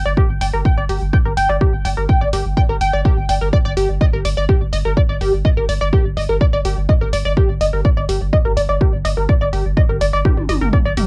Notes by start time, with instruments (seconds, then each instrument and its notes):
0.05 analog synth bass G1, synth arpeggio sound D5
0.17 synth arpeggio sound G4, kick
0.29 analog synth bass G1
0.41 analog synth bass G1, synth arpeggio sound G5, open hi-hat
0.53 analog synth bass G1, synth arpeggio sound A#4
0.65 synth arpeggio sound G5, kick
0.77 analog synth bass G1, synth arpeggio sound D5
0.89 analog synth bass G1, synth arpeggio sound G4, open hi-hat
1.01 analog synth bass G1
1.13 synth arpeggio sound G5, kick
1.25 analog synth bass G1, synth arpeggio sound A#4
1.37 analog synth bass G1, synth arpeggio sound G5, open hi-hat
1.49 analog synth bass G1, synth arpeggio sound D5
1.61 synth arpeggio sound G4, kick
1.73 analog synth bass G1
1.85 analog synth bass G1, synth arpeggio sound G5, open hi-hat
1.97 analog synth bass G1, synth arpeggio sound A#4
2.09 synth arpeggio sound G5, kick
2.21 analog synth bass G1, synth arpeggio sound D5
2.33 analog synth bass G1, synth arpeggio sound G4, open hi-hat
2.45 analog synth bass G1
2.57 synth arpeggio sound G5, kick
2.69 analog synth bass G1, synth arpeggio sound A#4
2.81 analog synth bass G1, synth arpeggio sound G5, open hi-hat
2.93 analog synth bass G1, synth arpeggio sound D5
3.05 synth arpeggio sound G4, kick
3.17 analog synth bass G1
3.29 analog synth bass G1, synth arpeggio sound G5, open hi-hat
3.41 analog synth bass G1, synth arpeggio sound A#4
3.53 synth arpeggio sound D5, kick
3.65 analog synth bass G1, synth arpeggio sound D5
3.77 analog synth bass G1, synth arpeggio sound G4, open hi-hat
3.89 analog synth bass G1
4.01 synth arpeggio sound D#5, kick
4.13 analog synth bass G1, synth arpeggio sound A#4
4.25 analog synth bass G1, synth arpeggio sound D5, open hi-hat
4.37 analog synth bass G1, synth arpeggio sound D5
4.49 synth arpeggio sound G4, kick
4.61 analog synth bass G1
4.73 analog synth bass G1, synth arpeggio sound D#5, open hi-hat
4.85 analog synth bass G1, synth arpeggio sound A#4
4.97 synth arpeggio sound D5, kick
5.09 analog synth bass G1, synth arpeggio sound D5
5.21 analog synth bass G1, synth arpeggio sound G4, open hi-hat
5.33 analog synth bass G1
5.45 synth arpeggio sound D#5, kick
5.57 analog synth bass G1, synth arpeggio sound A#4
5.69 analog synth bass G1, synth arpeggio sound D5, open hi-hat
5.81 analog synth bass G1, synth arpeggio sound D5
5.93 synth arpeggio sound G4, kick
6.05 analog synth bass G1
6.17 analog synth bass G1, synth arpeggio sound D#5, open hi-hat
6.29 analog synth bass G1, synth arpeggio sound A#4
6.41 synth arpeggio sound D5, kick
6.53 analog synth bass G1, synth arpeggio sound D5
6.65 analog synth bass G1, synth arpeggio sound G4, open hi-hat
6.77 analog synth bass G1
6.89 synth arpeggio sound D#5, kick
7.01 analog synth bass G1, synth arpeggio sound A#4
7.13 analog synth bass G1, synth arpeggio sound D5, open hi-hat
7.25 analog synth bass G1, synth arpeggio sound D5
7.37 synth arpeggio sound G4, kick
7.49 analog synth bass G1
7.61 analog synth bass G1, synth arpeggio sound D#5, open hi-hat
7.73 analog synth bass G1, synth arpeggio sound A#4
7.85 synth arpeggio sound D5, kick
7.97 analog synth bass G1, synth arpeggio sound D5
8.09 analog synth bass G1, synth arpeggio sound G4, open hi-hat
8.21 analog synth bass G1
8.33 synth arpeggio sound D#5, kick
8.45 analog synth bass G1, synth arpeggio sound A#4
8.57 analog synth bass G1, synth arpeggio sound D5, open hi-hat
8.69 analog synth bass G1, synth arpeggio sound D5
8.81 synth arpeggio sound G4, kick
8.93 analog synth bass G1
9.05 analog synth bass G1, synth arpeggio sound D#5, open hi-hat
9.17 analog synth bass G1, synth arpeggio sound A#4
9.29 synth arpeggio sound D5, kick
9.41 analog synth bass G1, synth arpeggio sound D5
9.53 analog synth bass G1, synth arpeggio sound G4, open hi-hat
9.65 analog synth bass G1
9.77 synth arpeggio sound D#5, kick
9.89 analog synth bass G1, synth arpeggio sound A#4
10.01 analog synth bass G1, synth arpeggio sound D5, open hi-hat
10.13 analog synth bass G1, synth arpeggio sound D5
10.25 synth arpeggio sound G4, kick, high tom
10.37 analog synth bass G1, high tom
10.49 analog synth bass G1, synth arpeggio sound D#5, open hi-hat, high tom
10.61 analog synth bass G1, synth arpeggio sound A#4, mid tom
10.73 synth arpeggio sound D5, kick, mid tom
10.85 analog synth bass G1, synth arpeggio sound D5
10.97 analog synth bass G1, synth arpeggio sound G4, mid tom, open hi-hat